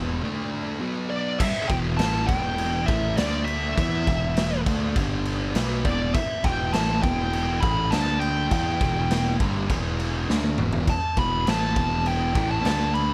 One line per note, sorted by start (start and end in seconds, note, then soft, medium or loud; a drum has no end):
0.00 0.20 E1 medium
0.00 0.21 E2 medium
0.00 0.22 B2 loud
0.00 0.22 E3 loud
0.22 0.80 D3 medium
0.22 0.81 A3 loud
0.22 0.81 D4 loud
0.81 1.39 B2 loud
0.81 1.40 F#3 medium
0.81 1.40 B3 loud
1.10 1.39 D5 medium
1.40 1.71 E5 loud
1.40 kick loud
1.40 crash loud
1.40 crash medium
1.68 1.98 E1 medium
1.68 1.98 E2 medium
1.68 1.99 B2 loud
1.68 1.99 E3 loud
1.68 1.76 G5 loud
1.68 kick loud
1.68 crash medium
1.97 2.27 A1 loud
1.97 2.28 A2 loud
1.97 2.28 E3 loud
1.97 2.29 A3 loud
1.97 2.27 A5 loud
1.97 snare loud
1.97 crash medium
2.27 2.84 E1 loud
2.27 2.87 E2 loud
2.27 2.88 B2 loud
2.27 2.88 E3 loud
2.27 2.90 G5 loud
2.27 kick loud
2.27 crash medium
2.58 crash medium
2.86 3.16 A1 loud
2.86 3.17 A2 loud
2.86 3.18 E3 medium
2.86 3.17 E5 loud
2.86 kick loud
2.86 crash medium
2.90 3.18 A3 loud
3.17 3.73 D2 loud
3.17 3.77 D3 medium
3.17 3.77 A3 loud
3.17 3.77 D4 loud
3.17 3.45 D5 medium
3.17 snare loud
3.17 crash medium
3.45 4.61 E5 medium
3.45 crash medium
3.77 4.05 E2 loud
3.77 4.06 E3 medium
3.77 4.07 B3 loud
3.77 4.07 E4 loud
3.77 kick loud
3.77 crash medium
4.07 4.63 E1 medium
4.07 4.66 E2 loud
4.07 4.66 B2 loud
4.07 4.66 E3 loud
4.07 kick loud
4.07 crash medium
4.37 snare loud
4.37 crash loud
4.66 4.94 D2 loud
4.66 4.95 D3 medium
4.66 4.95 A3 medium
4.66 4.96 D4 loud
4.66 kick loud
4.66 crash medium
4.96 5.51 G1 loud
4.96 5.54 G2 medium
4.96 5.55 D3 loud
4.96 5.55 G3 loud
4.96 kick loud
4.96 crash medium
5.25 crash medium
5.55 5.83 B1 loud
5.55 5.85 B2 loud
5.55 5.85 F#3 loud
5.55 5.85 B3 loud
5.55 snare loud
5.55 crash loud
5.85 6.13 E1 medium
5.85 6.14 E2 loud
5.85 6.14 B2 loud
5.85 6.15 E3 loud
5.85 6.14 D5 medium
5.85 kick loud
5.85 crash medium
6.14 6.45 E5 loud
6.14 kick loud
6.14 crash medium
6.44 6.72 E1 loud
6.44 6.73 E2 medium
6.44 6.73 B2 loud
6.44 6.74 E3 loud
6.44 6.73 G5 medium
6.44 kick loud
6.44 crash medium
6.73 7.02 A1 loud
6.73 7.03 A2 loud
6.73 7.03 E3 loud
6.73 7.03 A3 loud
6.73 7.02 A5 loud
6.73 snare loud
6.73 crash medium
7.03 7.59 E1 loud
7.03 7.62 E2 medium
7.03 7.61 B2 loud
7.03 7.61 E3 loud
7.03 7.64 G5 loud
7.03 kick loud
7.03 crash medium
7.33 crash medium
7.61 7.90 A1 loud
7.61 7.91 A2 medium
7.61 7.91 E3 loud
7.61 7.91 A3 loud
7.61 7.92 B5 loud
7.61 kick loud
7.61 crash medium
7.91 8.48 D2 loud
7.91 8.50 D3 medium
7.91 8.51 A3 loud
7.91 8.51 D4 loud
7.91 8.20 A5 loud
7.91 snare loud
7.91 crash medium
8.20 9.35 G5 medium
8.20 crash medium
8.51 8.79 E2 loud
8.51 8.80 E3 loud
8.51 8.80 B3 loud
8.51 8.80 E4 loud
8.51 kick loud
8.51 crash medium
8.81 9.36 E1 medium
8.81 9.39 E2 medium
8.81 9.39 B2 loud
8.81 9.40 E3 loud
8.81 kick loud
8.81 crash medium
9.11 snare loud
9.11 crash loud
9.39 9.68 G1 loud
9.39 9.68 G2 medium
9.39 9.69 D3 medium
9.39 9.69 G3 loud
9.39 kick loud
9.39 crash medium
9.69 10.25 E1 loud
9.69 10.27 E2 medium
9.69 10.28 B2 loud
9.69 10.28 E3 loud
9.69 kick loud
9.69 crash medium
10.00 crash medium
10.28 10.57 D2 loud
10.28 10.57 D3 loud
10.28 10.58 A3 loud
10.28 10.58 D4 loud
10.28 snare medium
10.44 high tom medium
10.57 10.86 E1 loud
10.57 10.87 E2 loud
10.57 10.87 B2 medium
10.57 10.87 E3 loud
10.57 mid tom medium
10.73 floor tom loud
10.88 11.19 A5 loud
10.88 kick loud
10.88 crash medium
11.16 11.45 E1 medium
11.16 11.46 E2 loud
11.16 11.46 B2 loud
11.16 11.46 E3 loud
11.16 11.49 B5 loud
11.16 kick loud
11.16 crash medium
11.46 11.75 A1 loud
11.46 11.75 A2 medium
11.46 11.76 E3 loud
11.46 11.76 A3 loud
11.46 12.07 A5 loud
11.46 snare loud
11.46 crash medium
11.76 12.32 E1 loud
11.76 12.35 E2 loud
11.76 12.34 B2 loud
11.76 12.34 E3 loud
11.76 kick loud
11.76 crash medium
12.06 12.51 G5 loud
12.06 crash medium
12.34 12.63 A1 loud
12.34 12.63 A2 medium
12.34 12.64 E3 medium
12.34 12.64 A3 loud
12.34 kick loud
12.34 crash medium
12.51 12.97 A5 loud
12.63 13.14 D2 loud
12.63 13.14 D3 loud
12.63 13.14 A3 medium
12.63 13.14 D4 loud
12.63 snare loud
12.63 crash medium
12.94 13.14 B5 loud
12.94 crash medium